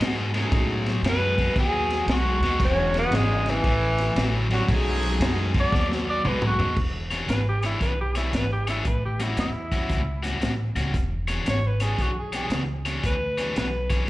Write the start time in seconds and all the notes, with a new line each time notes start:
Already playing: D#4
0.00 G#2 B2 G#3, snare, ride
0.34 B2 G#3 A3 C#4 D#4 G#4, snare, ride
0.52 A2 B2 F#3, kick, snare, ride
0.86 snare, ride
1.02 F#2 B2 G#3, snare, ride
1.09 B4
1.38 B2 G#3, kick, snare, ride
1.56 D#2 B2 F#3 G#4, kick, snare, ride
1.90 snare, ride
2.06 B1 B2 G#3, snare, ride
2.12 F#4
2.40 D#2 B2 G#3, snare, ride
2.59 E1 E2 B2 F#3 G#3 C#4 D4 F#4, kick, snare, ride
2.64 C#4
2.94 snare, ride
2.98 B3
3.11 G#1 E2 C#3, snare, ride
3.15 G#3
3.46 E2 C#3 E3, snare, ride
3.63 A1 A2 E3, kick, snare, ride
3.98 snare, ride
4.16 A1 A2 F#3, snare, ride
4.50 A2 F#3 G3 B3 C#4 F#4, snare, ride
4.69 B1 B2 F#3 G#3 A3 C#4 D#4 G#4, kick, snare, ride
5.03 snare, ride
5.20 F#2 B2 G#3, snare, ride
5.54 B2 G#3, kick, snare, ride
5.60 D5
5.72 D#2 B2 F#3, kick, snare
5.92 snare
6.10 D5
6.25 B1 B2 G#3 B4, mid tom
6.42 mid tom
6.47 F#4
6.59 D#2 B2 G#3, floor tom
6.77 E1, kick, crash
7.11 E3 D4 G#4 C#5, snare, closed hi-hat
7.28 G#1 B4, snare, closed hi-hat
7.49 G4
7.62 E3 D4 E4 G#4 C#5, snare, closed hi-hat
7.81 B1 B4, kick, snare, closed hi-hat
8.01 G4
8.15 E3 D4 E4 G#4 C#5, snare, closed hi-hat
8.33 G#1 B4, snare, closed hi-hat
8.52 G4
8.67 E3 D4 E4 G#4 C#5, snare, closed hi-hat
8.85 A1 B4, kick, closed hi-hat
9.05 G4
9.20 A2 G3 C#4 E4 F#4, snare, closed hi-hat
9.37 E2 E4, snare, closed hi-hat
9.72 A2 G3 C#4 F#4, kick, snare, closed hi-hat
9.89 C#2, kick, snare, closed hi-hat
10.23 A2 G3 C#4 F#4, snare, closed hi-hat
10.41 A1, snare, closed hi-hat
10.75 C#2 A2 G3 C#4 F#4, snare, closed hi-hat
10.94 E1, kick, snare, closed hi-hat
11.28 E3 D4 G#4 C#5, snare, closed hi-hat
11.46 G#1, snare, closed hi-hat
11.50 C#5
11.67 B4
11.80 E3 D4 G#4 C#5, snare, closed hi-hat
11.98 B1 F#4, kick, snare, closed hi-hat
12.19 G#4
12.33 E3 D4 G#4 C#5, snare, closed hi-hat
12.50 C#2, snare, closed hi-hat
12.85 E3 D4 G#4 C#5, snare, closed hi-hat
13.04 D2 B4, kick, snare, closed hi-hat
13.38 E3 D4 G#4 C#5, snare, closed hi-hat
13.56 B1 B4, snare, closed hi-hat
13.90 E3 D4 G#4 C#5, kick, snare, closed hi-hat